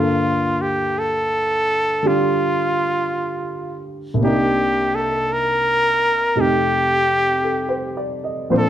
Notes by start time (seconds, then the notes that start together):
Already playing: G2 D3 A#3 F4 A4
0.61 G4
0.99 A4
2.03 D3 G3 D4 G4
2.07 F4
4.14 C2 C3
4.20 A#3 D4 G4
4.25 D#4
4.95 A4
5.32 A#4
6.35 F2 C3 A3 D#4 G4
6.40 G4
7.44 A4
7.69 C5
7.97 D5
8.24 D#5
8.50 A#2 F3 C4 D4 C5
8.58 A4